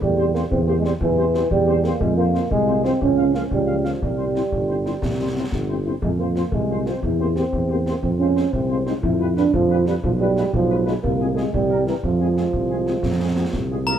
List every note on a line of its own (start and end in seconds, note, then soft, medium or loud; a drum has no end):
0.01 0.43 E2 medium
0.01 0.33 G3 medium
0.01 concert bass drum medium
0.17 0.24 G3 soft
0.17 0.24 C4 soft
0.17 0.24 G4 soft
0.17 0.23 C5 soft
0.34 0.40 G3 soft
0.34 0.42 A#3 medium
0.34 0.40 C4 soft
0.34 0.40 G4 soft
0.34 0.41 C5 soft
0.34 snare soft
0.51 0.93 E2 medium
0.51 0.59 C4 medium
0.51 concert bass drum medium
0.67 0.73 G3 soft
0.67 0.72 A#3 medium
0.67 0.73 C4 soft
0.67 0.74 G4 soft
0.67 0.73 C5 soft
0.78 0.85 G#3 medium
0.84 0.90 G3 soft
0.84 0.93 G3 medium
0.84 0.90 C4 soft
0.84 0.90 G4 soft
0.84 0.90 C5 soft
0.84 snare soft
1.01 1.43 E2 medium
1.01 1.48 E3 medium
1.01 concert bass drum medium
1.17 1.23 G3 soft
1.17 1.23 C4 soft
1.17 1.23 G4 soft
1.17 1.24 C5 soft
1.34 1.40 G3 soft
1.34 1.40 C4 soft
1.34 1.40 G4 soft
1.34 1.40 C5 soft
1.34 snare soft
1.51 1.93 E2 medium
1.51 1.86 G3 medium
1.51 concert bass drum medium
1.67 1.73 G3 soft
1.67 1.73 C4 soft
1.67 1.73 G4 soft
1.67 1.73 C5 soft
1.84 1.90 G3 soft
1.84 2.02 A#3 medium
1.84 1.90 C4 soft
1.84 1.90 G4 soft
1.84 1.91 C5 soft
1.84 snare soft
2.01 2.43 F2 medium
2.01 2.16 G#3 medium
2.01 concert bass drum medium
2.17 2.24 F3 soft
2.17 2.48 A#3 medium
2.17 2.23 C4 soft
2.17 2.24 F4 soft
2.17 2.24 C5 soft
2.33 2.40 F3 soft
2.33 2.39 C4 soft
2.33 2.40 F4 soft
2.33 2.40 C5 soft
2.33 snare soft
2.51 2.93 C2 medium
2.51 2.83 G#3 medium
2.51 concert bass drum medium
2.67 2.73 F3 soft
2.67 2.73 C4 soft
2.67 2.74 F4 soft
2.67 2.73 C5 soft
2.84 2.90 F3 soft
2.84 2.90 C4 soft
2.84 3.00 C4 medium
2.84 2.90 F4 soft
2.84 2.90 C5 soft
2.84 snare soft
3.01 3.43 C#2 medium
3.01 3.33 C#4 medium
3.01 concert bass drum medium
3.17 3.24 F3 soft
3.17 3.24 A#3 soft
3.17 3.24 F4 soft
3.17 3.23 F5 soft
3.34 3.41 F3 soft
3.34 3.41 A#3 soft
3.34 3.43 A#3 medium
3.34 3.41 F4 soft
3.34 3.40 F5 soft
3.34 snare soft
3.51 3.93 C#2 medium
3.51 3.87 G3 medium
3.51 concert bass drum medium
3.66 3.74 F3 soft
3.66 3.74 A#3 soft
3.66 3.74 F4 soft
3.66 3.72 F5 soft
3.83 3.91 F3 soft
3.83 4.02 F3 medium
3.83 3.91 A#3 soft
3.83 3.91 F4 soft
3.83 3.90 F5 soft
3.83 snare soft
4.02 4.40 C2 soft
4.02 5.49 G3 medium
4.02 concert bass drum medium
4.17 4.24 G3 soft
4.17 4.24 C4 soft
4.17 4.24 E4 soft
4.17 4.24 C5 soft
4.35 4.41 G3 soft
4.35 4.41 C4 soft
4.35 4.41 E4 soft
4.35 4.41 C5 soft
4.35 snare soft
4.52 4.94 G1 soft
4.52 concert bass drum medium
4.68 4.75 G3 soft
4.68 4.75 C4 soft
4.68 4.74 E4 soft
4.68 4.74 C5 soft
4.84 4.91 G3 soft
4.84 4.91 C4 soft
4.84 4.91 E4 soft
4.84 4.90 C5 soft
4.84 snare soft
5.02 5.44 C2 soft
5.02 concert bass drum medium
5.02 snare soft
5.18 5.24 G3 soft
5.18 5.24 C4 soft
5.18 5.24 E4 soft
5.18 5.25 C5 soft
5.35 5.42 G3 soft
5.35 5.41 C4 soft
5.35 5.41 E4 soft
5.35 5.42 C5 soft
5.52 5.94 G1 soft
5.52 concert bass drum medium
5.52 snare soft
5.68 5.75 G3 soft
5.68 5.75 C4 soft
5.68 5.75 E4 soft
5.68 5.75 C5 soft
5.85 5.91 G3 soft
5.85 5.92 C4 soft
5.85 5.92 E4 soft
5.85 5.92 C5 soft
6.02 6.44 F2 soft
6.02 6.10 G#3 medium
6.02 concert bass drum medium
6.18 6.24 F3 soft
6.18 6.49 A#3 medium
6.18 6.25 C4 soft
6.18 6.25 F4 soft
6.18 6.25 C5 soft
6.35 6.42 F3 soft
6.35 6.42 C4 soft
6.35 6.42 F4 soft
6.35 6.41 C5 soft
6.35 snare soft
6.52 6.94 C2 soft
6.52 6.88 G#3 medium
6.52 concert bass drum medium
6.69 6.75 F3 soft
6.69 6.75 C4 soft
6.69 6.75 F4 soft
6.69 6.76 C5 soft
6.86 6.92 F3 soft
6.86 6.92 C4 soft
6.86 7.03 C4 medium
6.86 6.92 F4 soft
6.86 6.93 C5 soft
6.86 snare soft
7.02 7.44 E2 soft
7.02 7.34 E4 medium
7.02 concert bass drum medium
7.19 7.25 A#3 soft
7.19 7.25 C4 soft
7.19 7.25 G4 soft
7.19 7.26 C5 soft
7.36 7.42 A#3 soft
7.36 7.42 C4 soft
7.36 7.99 C4 medium
7.36 7.42 G4 soft
7.36 7.42 C5 soft
7.36 snare soft
7.53 7.95 E2 soft
7.53 concert bass drum medium
7.70 7.75 A#3 soft
7.70 7.76 C4 soft
7.70 7.75 G4 soft
7.70 7.76 C5 soft
7.86 7.93 A#3 soft
7.86 7.93 C4 soft
7.86 7.93 G4 soft
7.86 7.93 C5 soft
7.86 snare soft
8.02 8.44 F2 soft
8.02 8.10 C4 medium
8.02 concert bass drum medium
8.19 8.26 G#3 soft
8.19 8.26 C4 soft
8.19 8.53 C#4 medium
8.19 8.26 F4 soft
8.19 8.26 C5 soft
8.36 8.42 G#3 soft
8.36 8.42 C4 soft
8.36 8.42 F4 soft
8.36 8.42 C5 soft
8.36 snare soft
8.52 8.95 C2 medium
8.52 8.86 C4 medium
8.52 concert bass drum medium
8.69 8.75 G#3 soft
8.69 8.75 C4 soft
8.69 8.75 F4 soft
8.69 8.75 C5 soft
8.86 8.92 G#3 soft
8.86 8.92 C4 soft
8.86 8.94 D#4 medium
8.86 8.92 F4 soft
8.86 8.92 C5 soft
8.86 snare soft
9.02 9.45 F2 medium
9.02 9.34 E4 medium
9.02 concert bass drum medium
9.19 9.25 G3 soft
9.19 9.25 D4 soft
9.19 9.25 F4 soft
9.19 9.26 B4 soft
9.36 9.42 G3 soft
9.36 9.42 D4 soft
9.36 9.52 D4 medium
9.36 9.42 F4 soft
9.36 9.42 B4 soft
9.36 snare soft
9.53 9.95 F2 medium
9.53 9.84 F3 medium
9.53 concert bass drum medium
9.69 9.75 G3 soft
9.69 9.75 D4 soft
9.69 9.75 F4 soft
9.69 9.76 B4 soft
9.86 9.92 G3 soft
9.86 9.95 G3 medium
9.86 9.92 D4 soft
9.86 9.92 F4 soft
9.86 9.93 B4 soft
9.86 snare soft
10.03 10.45 B1 medium
10.03 10.11 F3 medium
10.03 concert bass drum medium
10.19 10.51 G3 medium
10.19 10.25 G#3 soft
10.19 10.25 D4 soft
10.19 10.25 F4 soft
10.19 10.26 B4 soft
10.36 10.42 G#3 soft
10.36 10.42 D4 soft
10.36 10.42 F4 soft
10.36 10.43 B4 soft
10.36 snare soft
10.53 10.95 B1 medium
10.53 10.85 F3 medium
10.53 concert bass drum medium
10.69 10.76 G#3 soft
10.69 10.76 D4 soft
10.69 10.76 F4 soft
10.69 10.75 B4 soft
10.85 10.94 G#3 medium
10.85 10.92 G#3 soft
10.85 10.93 D4 soft
10.85 10.93 F4 soft
10.85 10.91 B4 soft
10.85 snare soft
11.03 11.45 C2 medium
11.03 11.37 A#3 medium
11.03 concert bass drum medium
11.20 11.26 G#3 soft
11.20 11.26 C4 soft
11.20 11.26 F4 soft
11.20 11.26 G#4 soft
11.35 11.53 G#3 medium
11.35 11.43 G#3 soft
11.35 11.43 C4 soft
11.35 11.43 F4 soft
11.35 11.42 G#4 soft
11.35 snare soft
11.53 11.91 C2 medium
11.53 11.84 G3 medium
11.53 concert bass drum medium
11.70 11.76 G3 soft
11.70 11.76 C4 soft
11.70 11.76 E4 soft
11.70 11.76 A#4 soft
11.87 11.95 E3 medium
11.87 11.93 G3 soft
11.87 11.93 C4 soft
11.87 11.93 E4 soft
11.87 11.93 A#4 soft
11.87 snare soft
12.03 12.45 F2 medium
12.03 13.70 F3 medium
12.03 concert bass drum medium
12.20 12.26 G#3 soft
12.20 12.26 C4 soft
12.20 12.26 F4 soft
12.20 12.26 G#4 soft
12.36 12.43 G#3 soft
12.36 12.43 C4 soft
12.36 12.43 F4 soft
12.36 12.43 G#4 soft
12.36 snare soft
12.53 12.95 C2 soft
12.53 concert bass drum medium
12.69 12.77 G#3 soft
12.69 12.77 C4 soft
12.69 12.77 F4 soft
12.69 12.76 G#4 soft
12.86 12.93 G#3 soft
12.86 12.93 C4 soft
12.86 12.93 F4 soft
12.86 12.92 G#4 soft
12.86 snare soft
13.03 13.45 F2 soft
13.03 concert bass drum medium
13.03 snare soft
13.19 13.27 G#3 soft
13.19 13.26 C4 soft
13.19 13.26 F4 soft
13.19 13.26 G#4 soft
13.36 13.43 G#3 soft
13.36 13.43 C4 soft
13.36 13.43 F4 soft
13.36 13.42 G#4 soft
13.53 13.95 C2 medium
13.53 concert bass drum medium
13.53 snare soft
13.70 13.76 G#3 soft
13.70 13.76 C4 soft
13.70 13.76 F4 soft
13.70 13.77 G#4 soft
13.86 13.93 G#3 soft
13.86 13.99 A#3 medium
13.86 13.93 C4 soft
13.86 13.93 F4 soft
13.86 13.93 G#4 soft
13.86 13.99 A#4 medium
13.86 13.92 A#5 medium
13.86 13.99 A#5 medium